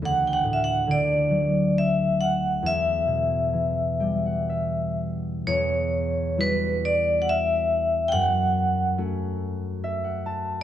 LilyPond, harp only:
<<
  \new Staff \with { instrumentName = "Harp" } { \time 3/4 \key e \dorian \tempo 4 = 68 r2. | r4. g''16 fis''16 e''4 | r2. | r2 e''16 fis''16 a''8 | }
  \new Staff \with { instrumentName = "Harp" } { \clef bass \time 3/4 \key e \dorian d,8 a,8 d8 fis4. | e,8 b,8 e8 g4. | e,4 <g e' fis'>2 | fis,4 <a cis' fis'>2 | }
>>